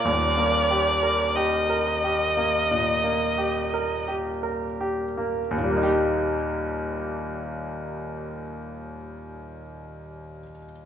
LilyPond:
<<
  \new Staff \with { instrumentName = "Violin" } { \time 4/4 \key ees \major \tempo 4 = 44 d''4 ees''2 r4 | r1 | }
  \new Staff \with { instrumentName = "Grand piano" } { \time 4/4 \key ees \major <ees,, ees,>16 bes16 g'16 bes'16 g'16 bes'16 g'16 bes16 bes,16 bes16 g'16 bes'16 g'16 bes'16 g'16 bes16 | <ees, bes, g bes ees' g'>1 | }
>>